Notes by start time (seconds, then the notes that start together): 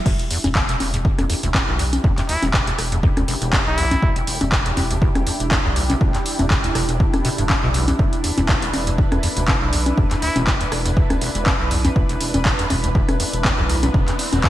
0.06 E1 E2 D4 E4 G4, kick, crash
0.19 closed hi-hat
0.31 E2, open hi-hat
0.44 E1 E2, closed hi-hat, high conga
0.55 D2, kick, clap
0.69 E1, closed hi-hat
0.80 E1, open hi-hat, high conga
0.94 E2, closed hi-hat
1.05 kick
1.19 E1 E2, cross-stick, closed hi-hat, high conga
1.30 E2, open hi-hat
1.43 E1 D2, closed hi-hat
1.54 E1, kick, clap, high conga
1.68 E1 B1
1.79 E2, open hi-hat
1.93 closed hi-hat, high conga
2.04 E1 E2, kick
2.18 E2, clap, closed hi-hat
2.29 D2 E4, open hi-hat
2.43 E1, closed hi-hat, high conga
2.54 E1, kick, clap
2.67 E2, closed hi-hat
2.79 E1, cross-stick, open hi-hat
2.92 E2, closed hi-hat
3.03 E2, kick
3.17 E1 D2, cross-stick, closed hi-hat, high conga
3.28 E1, open hi-hat
3.42 E1, closed hi-hat
3.53 E2, kick, clap, high conga
3.67 B1 E4
3.78 E2, open hi-hat
3.91 E2, closed hi-hat, high conga
4.02 E1 D2, kick
4.16 E1, closed hi-hat
4.27 E1, open hi-hat
4.41 E1 E2, closed hi-hat, high conga
4.52 kick, clap
4.66 E2, closed hi-hat
4.77 E1 E2, open hi-hat, high conga
4.91 D2, closed hi-hat
5.02 E1, kick
5.15 E1, cross-stick, closed hi-hat, high conga
5.27 E2, open hi-hat
5.40 E1, closed hi-hat
5.51 E2, kick, clap, high conga
5.65 B1 E2
5.76 D2, open hi-hat
5.90 E1, closed hi-hat, high conga
6.01 E1, kick
6.15 E2, clap, closed hi-hat
6.26 open hi-hat
6.39 E1 E2, closed hi-hat, high conga
6.50 E2, kick, clap
6.64 D2, closed hi-hat
6.75 E1, cross-stick, open hi-hat
6.89 E1, closed hi-hat
7.00 E2, kick
7.14 E1, cross-stick, closed hi-hat, high conga
7.25 B2, open hi-hat
7.38 E1 G2, closed hi-hat
7.50 kick, clap, high conga
7.63 B1 B2
7.74 E1, open hi-hat
7.88 E2, closed hi-hat, high conga
7.99 E1 E2 B4, kick
8.13 closed hi-hat
8.24 E2, open hi-hat
8.38 E1 E2, closed hi-hat, high conga
8.49 D2, kick, clap
8.62 E1, closed hi-hat
8.73 E1, open hi-hat, high conga
8.87 E2, closed hi-hat
8.98 kick
9.12 E1 E2, cross-stick, closed hi-hat, high conga
9.23 E2, open hi-hat
9.37 E1 D2, closed hi-hat
9.48 E1, kick, clap, high conga
9.62 E1 B1
9.73 E2, open hi-hat
9.86 closed hi-hat, high conga
9.98 E1 E2, kick
10.11 E2, clap, closed hi-hat
10.22 D2 E4, open hi-hat
10.36 E1, closed hi-hat, high conga
10.47 E1, kick, clap
10.61 E2, closed hi-hat
10.72 E1, cross-stick, open hi-hat
10.86 E2, closed hi-hat
10.97 E2, kick
11.10 E1 D2, cross-stick, closed hi-hat, high conga
11.21 E1, open hi-hat
11.35 E1, closed hi-hat
11.46 E2, kick, clap, high conga
11.60 B1
11.71 E2, open hi-hat
11.85 E2, closed hi-hat, high conga
11.96 E1 D2, kick, riser
12.09 E1, closed hi-hat
12.21 E1, open hi-hat
12.34 E1 E2, closed hi-hat, high conga
12.45 kick, clap
12.59 E2, closed hi-hat
12.70 E1 E2, open hi-hat, high conga
12.84 D2, closed hi-hat
12.95 E1, kick
13.09 E1, cross-stick, closed hi-hat, high conga
13.20 E2, open hi-hat
13.33 E1, closed hi-hat
13.45 E2, kick, clap, high conga
13.58 B1 E2
13.70 D2, open hi-hat
13.83 E1, closed hi-hat, high conga
13.94 E1, kick
14.08 E2, clap, closed hi-hat
14.19 open hi-hat
14.33 E1 E2, closed hi-hat, high conga
14.44 E2, kick, clap